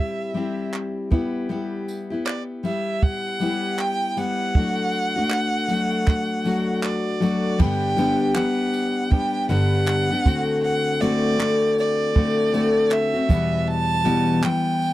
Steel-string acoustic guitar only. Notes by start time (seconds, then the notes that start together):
Already playing: G3 C4 E4 G4
0.34 G3 C4 E4 G4
1.10 G3 B3 E4 G4
1.49 G3 B3 E4 G4
2.10 B3 E4 G4
2.63 G3 B3 E4 G4
3.40 G3 B3 E4 G4
4.17 G3 B3 E4 G4
4.55 F#3 A3 D4 F#4
5.16 A3 D4 F#4
5.68 F#3 A3 D4 F#4
6.44 F#3 A3 D4 F#4
7.20 F#3 A3 D4 F#4
7.58 G2 D3 G3 B3 D4 G4
7.97 G2 D3 G3 B3 D4 G4
8.35 G3 B3 D4 G4
9.10 G3 B3 D4 G4
9.49 G2 D3 G3 B3 D4 G4
10.11 G3 B3 D4 G4
10.25 D3 A3 C4 F#4
11.01 D3 A3 C4 F#4
11.38 D3 A3 C4 F#4
12.14 D3 A3 C4 F#4
12.53 D3 A3 C4 F#4
13.14 A3 C4 F#4
13.29 E2 B2 E3 G3 B3 F#4
14.04 E2 B2 E3 G3 B3 F#4
14.42 E3 G3 B3